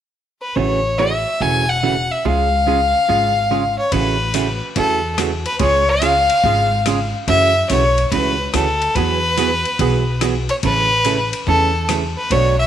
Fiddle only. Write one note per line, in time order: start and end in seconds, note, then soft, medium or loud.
0.42 0.58 B4 medium
0.56 1.00 C#5 medium
0.99 1.43 E5 medium
1.42 1.71 G#5 loud
1.69 2.13 F#5 medium
2.11 2.27 E5 medium
2.26 3.78 F5 loud
3.79 3.93 C#5 medium
3.92 4.62 B4 loud
4.76 5.15 A4 medium
5.46 5.59 B4 medium
5.60 5.91 C#5 loud
5.89 7.14 F5 loud
7.28 7.67 E5 loud
7.70 8.09 C#5 loud
8.12 8.51 B4 loud
8.55 8.97 A4 loud
8.96 10.21 B4 loud
10.50 10.56 C#5 medium
10.64 11.30 B4 loud
11.47 11.86 A4 loud
12.18 12.33 B4 medium
12.31 12.58 C#5 loud
12.59 12.67 E5 loud